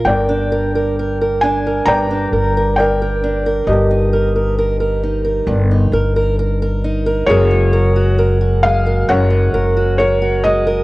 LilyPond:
<<
  \new Staff \with { instrumentName = "Felt piano" } { \time 4/4 \key ees \major \tempo 4 = 66 << { g''4. aes''8 bes''4 g''4 | ees''4. r2 r8 | des''4 r8 f''8 ges''4 des''8 ees''8 | } \\ { <bes' d''>2 <d'' g''>4 <bes' d''>4 | <g' bes'>2 r2 | <aes' bes'>2 <bes' des''>2 | } >> }
  \new Staff \with { instrumentName = "Steel-string acoustic guitar" } { \time 4/4 \key ees \major << { r16 d'16 bes'16 bes'16 bes'16 bes'16 d'16 bes'8 d'16 bes'16 bes'16 bes'16 bes'16 d'16 bes'16 | r16 ees'16 bes'16 bes'16 bes'16 bes'16 ees'16 bes'8 ees'16 bes'16 bes'16 bes'16 bes'16 ees'16 bes'16 | <ges aes ges' bes'>16 aes16 bes'16 ges'16 bes'16 ges'16 aes16 bes'8 aes16 bes'16 ges'16 bes'16 ges'16 aes16 bes'16 | } \\ { g,2 g,2 | g,2 g,2 | ges,2 ges,2 | } >> }
  \new Staff \with { instrumentName = "Upright bass" } { \clef bass \time 4/4 \key ees \major g,,2 g,,8 g,,4. | g,,2 g,,8 g,,4. | ges,,2 ges,,8 ges,,4. | }
>>